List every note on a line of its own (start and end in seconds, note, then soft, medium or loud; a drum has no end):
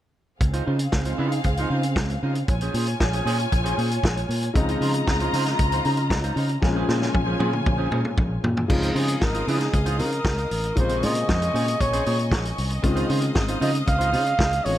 0.40 0.60 C#2 medium
0.40 2.44 C4 medium
0.40 2.44 G#4 medium
0.40 2.44 F5 loud
0.40 muted clean electric guitar stroke soft
0.40 kick loud
0.40 closed hi-hat medium
0.53 0.65 D#4 medium
0.53 0.66 F4 medium
0.53 0.66 C5 medium
0.53 closed hi-hat soft
0.66 0.87 C#3 loud
0.66 0.79 D#4 medium
0.66 0.78 F4 medium
0.66 0.77 C5 medium
0.79 muted clean electric guitar stroke soft
0.79 closed hi-hat medium
0.92 1.12 C#2 medium
0.92 muted clean electric guitar stroke soft
0.92 kick loud
0.92 snare medium
1.05 1.17 D#4 soft
1.05 1.17 F4 medium
1.05 1.18 C5 medium
1.05 closed hi-hat soft
1.18 1.38 C#3 medium
1.18 1.38 D#4 medium
1.18 1.31 F4 medium
1.18 1.31 C5 medium
1.32 muted clean electric guitar stroke soft
1.32 closed hi-hat soft
1.44 1.64 C#2 loud
1.44 muted clean electric guitar stroke soft
1.44 kick loud
1.44 closed hi-hat medium
1.57 1.70 D#4 medium
1.57 1.71 F4 medium
1.57 1.71 C5 medium
1.57 closed hi-hat soft
1.70 1.98 C#3 medium
1.70 1.83 D#4 medium
1.70 1.83 F4 medium
1.70 1.83 C5 medium
1.83 muted clean electric guitar stroke soft
1.83 closed hi-hat soft
1.96 2.16 C#2 medium
1.96 kick loud
1.96 snare loud
2.10 muted clean electric guitar stroke soft
2.10 closed hi-hat soft
2.23 2.42 C#3 medium
2.23 2.38 D#4 medium
2.23 2.36 F4 medium
2.23 2.34 C5 medium
2.35 muted clean electric guitar stroke soft
2.35 closed hi-hat soft
2.47 2.68 A#1 medium
2.47 4.52 F4 medium
2.47 4.51 C#5 medium
2.47 4.51 G#5 loud
2.47 muted clean electric guitar stroke soft
2.47 kick loud
2.47 closed hi-hat medium
2.61 2.75 C#4 medium
2.61 2.76 G#4 medium
2.61 2.76 C5 medium
2.61 closed hi-hat soft
2.74 2.94 A#2 medium
2.74 2.87 C#4 medium
2.74 2.88 G#4 medium
2.74 2.88 C5 medium
2.74 open hi-hat medium
2.87 muted clean electric guitar stroke soft
2.87 closed hi-hat medium
3.00 3.20 A#1 medium
3.00 muted clean electric guitar stroke soft
3.00 kick loud
3.00 snare medium
3.13 3.25 C#4 medium
3.13 3.25 G#4 medium
3.13 3.25 C5 medium
3.13 closed hi-hat soft
3.25 3.45 A#2 medium
3.25 3.42 C#4 medium
3.25 3.39 G#4 loud
3.25 3.38 C5 loud
3.25 open hi-hat medium
3.40 muted clean electric guitar stroke soft
3.40 closed hi-hat soft
3.52 3.72 A#1 loud
3.52 muted clean electric guitar stroke soft
3.52 kick loud
3.52 closed hi-hat medium
3.64 3.76 C#4 medium
3.64 3.77 G#4 medium
3.64 3.77 C5 medium
3.64 closed hi-hat soft
3.77 3.97 A#2 medium
3.77 3.90 C#4 medium
3.77 3.90 G#4 medium
3.77 3.90 C5 medium
3.77 open hi-hat soft
3.91 muted clean electric guitar stroke soft
3.91 closed hi-hat soft
4.03 4.23 A#1 medium
4.03 muted clean electric guitar stroke soft
4.03 kick loud
4.03 snare loud
4.17 muted clean electric guitar stroke soft
4.17 closed hi-hat soft
4.29 4.49 A#2 medium
4.29 open hi-hat medium
4.43 muted clean electric guitar stroke soft
4.43 closed hi-hat soft
4.54 4.75 C#2 medium
4.54 6.58 C#3 medium
4.54 4.61 D#3 medium
4.54 6.59 G#3 medium
4.54 6.59 C4 medium
4.54 6.60 D#4 medium
4.54 6.59 F4 medium
4.54 6.59 D#5 medium
4.54 6.59 A#5 loud
4.54 muted clean electric guitar stroke soft
4.54 kick loud
4.54 closed hi-hat medium
4.61 6.61 F3 medium
4.69 4.80 D#4 medium
4.69 4.81 F4 medium
4.69 4.81 C5 medium
4.69 closed hi-hat soft
4.81 5.01 C#3 loud
4.81 4.93 D#4 medium
4.81 4.94 F4 medium
4.81 4.94 C5 medium
4.81 open hi-hat medium
4.94 muted clean electric guitar stroke soft
4.94 closed hi-hat medium
5.07 5.27 C#2 medium
5.07 muted clean electric guitar stroke soft
5.07 kick loud
5.07 snare medium
5.20 5.33 D#4 medium
5.20 5.33 F4 medium
5.20 5.33 C5 medium
5.20 closed hi-hat soft
5.33 5.53 C#3 medium
5.33 5.49 D#4 medium
5.33 5.47 F4 medium
5.33 5.46 C5 loud
5.33 open hi-hat medium
5.46 muted clean electric guitar stroke soft
5.46 snare soft
5.46 closed hi-hat soft
5.59 5.79 C#2 loud
5.59 muted clean electric guitar stroke soft
5.59 kick loud
5.59 closed hi-hat medium
5.72 5.85 D#4 medium
5.72 5.86 F4 medium
5.72 5.86 C5 medium
5.72 closed hi-hat soft
5.85 6.12 C#3 medium
5.85 5.98 D#4 medium
5.85 5.98 F4 medium
5.85 5.98 C5 medium
5.85 open hi-hat soft
5.97 muted clean electric guitar stroke soft
5.97 closed hi-hat soft
6.10 6.30 C#2 medium
6.10 kick loud
6.10 snare loud
6.24 6.36 D#4 medium
6.24 6.36 F4 medium
6.24 6.37 C5 medium
6.24 closed hi-hat soft
6.36 6.56 C#3 medium
6.36 6.49 D#4 soft
6.36 6.49 F4 medium
6.36 6.49 C5 medium
6.36 open hi-hat medium
6.49 muted clean electric guitar stroke medium
6.49 closed hi-hat soft
6.62 6.82 A#1 medium
6.62 8.65 C#3 medium
6.62 8.66 F3 medium
6.62 8.66 G#3 medium
6.62 8.67 A#3 medium
6.62 6.70 C4 medium
6.62 8.66 F4 medium
6.62 8.66 C#5 medium
6.62 8.66 G#5 medium
6.62 muted clean electric guitar stroke soft
6.62 kick loud
6.62 snare medium
6.71 8.70 C#4 medium
6.76 6.86 C#4 medium
6.76 6.87 G#4 medium
6.76 6.88 C5 medium
6.88 7.08 A#2 loud
6.88 7.00 C#4 medium
6.88 7.01 G#4 medium
6.88 7.00 C5 medium
6.88 snare medium
7.02 muted clean electric guitar stroke soft
7.02 snare medium
7.14 7.34 A#1 medium
7.14 muted clean electric guitar stroke soft
7.14 kick loud
7.14 high tom medium
7.26 7.38 C#4 medium
7.26 7.38 G#4 medium
7.26 7.39 C5 medium
7.39 7.59 A#2 medium
7.39 7.55 C#4 medium
7.39 7.52 G#4 medium
7.39 7.51 C5 medium
7.39 high tom medium
7.52 muted clean electric guitar stroke soft
7.52 mid tom medium
7.66 7.86 A#1 loud
7.66 muted clean electric guitar stroke soft
7.66 kick loud
7.66 mid tom medium
7.78 7.90 C#4 medium
7.78 7.91 G#4 medium
7.78 7.91 C5 medium
7.91 8.11 A#2 medium
7.91 8.04 C#4 medium
7.91 8.03 G#4 medium
7.91 8.02 C5 medium
7.91 mid tom medium
8.04 muted clean electric guitar stroke soft
8.04 mid tom medium
8.17 8.37 A#1 medium
8.17 muted clean electric guitar stroke soft
8.17 kick loud
8.17 mid tom medium
8.30 muted clean electric guitar stroke soft
8.44 8.63 A#2 loud
8.44 floor tom medium
8.57 muted clean electric guitar stroke medium
8.57 floor tom medium
8.68 8.89 C#2 loud
8.68 10.72 C#3 medium
8.68 10.72 F3 medium
8.68 10.73 G#3 medium
8.68 10.73 C4 medium
8.68 10.74 D#4 medium
8.68 8.95 F4 medium
8.68 14.78 D#5 medium
8.68 10.75 F5 medium
8.68 10.75 D#6 medium
8.68 muted clean electric guitar stroke soft
8.68 kick loud
8.68 crash loud
8.82 8.93 D#4 medium
8.82 8.94 F4 medium
8.82 8.95 C5 medium
8.82 closed hi-hat soft
8.95 9.15 C#3 medium
8.95 9.07 D#4 medium
8.95 9.08 F4 medium
8.95 9.24 G#4 medium
8.95 9.07 C5 medium
8.95 open hi-hat medium
9.08 muted clean electric guitar stroke soft
9.08 closed hi-hat medium
9.21 9.41 G#1 medium
9.21 9.50 A#4 medium
9.21 kick loud
9.21 snare medium
9.34 9.47 D#4 medium
9.34 9.47 F4 medium
9.34 9.47 C5 medium
9.34 closed hi-hat soft
9.47 9.67 C#3 medium
9.47 9.68 D#4 medium
9.47 9.61 F4 loud
9.47 10.02 G#4 medium
9.47 9.60 C5 medium
9.47 open hi-hat medium
9.61 muted clean electric guitar stroke soft
9.61 snare soft
9.61 closed hi-hat soft
9.73 10.00 C#2 loud
9.73 muted clean electric guitar stroke soft
9.73 kick loud
9.73 closed hi-hat medium
9.86 9.97 D#4 medium
9.86 9.98 F4 medium
9.86 9.99 C5 medium
9.86 closed hi-hat soft
9.98 10.19 C#3 medium
9.98 10.11 D#4 soft
9.98 10.11 F4 medium
9.98 10.77 A#4 medium
9.98 10.12 C5 medium
9.98 open hi-hat soft
10.12 muted clean electric guitar stroke soft
10.12 closed hi-hat soft
10.25 10.44 C#2 medium
10.25 kick loud
10.25 snare loud
10.38 muted clean electric guitar stroke soft
10.38 closed hi-hat soft
10.51 10.71 A1 medium
10.51 open hi-hat medium
10.64 muted clean electric guitar stroke medium
10.64 closed hi-hat soft
10.76 11.04 A#1 medium
10.76 12.81 C3 medium
10.76 12.79 C#3 medium
10.76 12.80 G#3 medium
10.76 12.80 A#3 medium
10.76 12.81 F4 medium
10.76 11.06 C5 loud
10.76 12.82 G#5 medium
10.76 12.82 C#6 medium
10.76 muted clean electric guitar stroke soft
10.76 kick loud
10.76 closed hi-hat medium
10.89 11.01 C#4 medium
10.89 11.02 G#4 medium
10.89 11.03 C5 medium
10.89 closed hi-hat soft
11.02 11.22 A#2 medium
11.02 11.15 C#4 medium
11.02 11.15 G#4 medium
11.02 11.14 C5 medium
11.02 11.82 D#5 loud
11.02 open hi-hat medium
11.15 muted clean electric guitar stroke soft
11.15 closed hi-hat medium
11.28 11.48 F2 medium
11.28 muted clean electric guitar stroke soft
11.28 kick loud
11.28 snare loud
11.41 11.53 C#4 medium
11.41 11.53 G#4 medium
11.41 11.54 C5 medium
11.41 closed hi-hat soft
11.54 11.74 A#2 medium
11.54 11.70 C#4 medium
11.54 11.66 G#4 medium
11.54 11.66 C5 medium
11.54 open hi-hat medium
11.67 muted clean electric guitar stroke soft
11.67 closed hi-hat medium
11.80 12.00 A#1 loud
11.80 12.33 C#5 medium
11.80 muted clean electric guitar stroke soft
11.80 kick loud
11.80 closed hi-hat medium
11.93 12.05 C#4 medium
11.93 12.05 G#4 medium
11.93 12.06 C5 medium
11.93 closed hi-hat soft
12.06 12.33 A#2 medium
12.06 12.18 C#4 medium
12.06 12.19 G#4 medium
12.06 12.17 C5 medium
12.06 open hi-hat soft
12.19 muted clean electric guitar stroke medium
12.19 closed hi-hat soft
12.31 12.51 A#1 medium
12.31 muted clean electric guitar stroke soft
12.31 kick loud
12.31 snare loud
12.44 muted clean electric guitar stroke soft
12.44 closed hi-hat soft
12.58 12.78 C2 medium
12.58 open hi-hat medium
12.70 muted clean electric guitar stroke medium
12.70 closed hi-hat soft
12.82 13.03 C#2 medium
12.82 14.61 D#3 medium
12.82 14.61 G#3 medium
12.82 14.61 C4 medium
12.82 14.62 C#4 medium
12.82 14.62 F4 medium
12.82 14.78 F5 medium
12.82 14.78 D#6 medium
12.82 muted clean electric guitar stroke soft
12.82 kick loud
12.82 closed hi-hat medium
12.95 13.08 D#4 medium
12.95 13.09 F4 medium
12.95 13.09 C5 medium
12.95 closed hi-hat soft
13.09 13.29 C#3 medium
13.09 13.21 D#4 medium
13.09 13.21 F4 medium
13.09 13.21 C5 medium
13.09 open hi-hat medium
13.22 muted clean electric guitar stroke medium
13.22 closed hi-hat medium
13.35 13.55 G#1 medium
13.35 kick loud
13.35 snare medium
13.48 13.59 D#4 medium
13.48 13.60 F4 medium
13.48 13.60 C5 medium
13.48 closed hi-hat medium
13.61 13.81 C#3 medium
13.61 13.77 D#4 medium
13.61 13.73 F4 medium
13.61 13.72 C5 medium
13.61 13.74 D#5 loud
13.61 open hi-hat medium
13.73 muted clean electric guitar stroke soft
13.73 closed hi-hat soft
13.86 14.14 C#2 loud
13.86 14.66 F5 loud
13.86 muted clean electric guitar stroke medium
13.86 kick loud
13.86 closed hi-hat medium
13.98 14.11 D#4 medium
13.98 14.11 F4 medium
13.98 14.11 C5 medium
13.98 closed hi-hat soft
14.12 14.32 C#3 medium
14.12 14.25 D#4 medium
14.12 14.25 F4 medium
14.12 14.24 C5 medium
14.12 open hi-hat medium
14.25 muted clean electric guitar stroke soft
14.25 closed hi-hat soft
14.39 14.59 C#2 medium
14.39 muted clean electric guitar stroke soft
14.39 kick loud
14.39 snare loud
14.52 muted clean electric guitar stroke soft
14.52 closed hi-hat soft
14.64 14.78 A1 medium
14.64 14.78 D#3 soft
14.64 14.78 G#3 soft
14.64 14.78 C4 soft
14.64 14.78 C#4 soft
14.64 14.78 F4 medium
14.64 14.78 C#5 loud
14.64 open hi-hat medium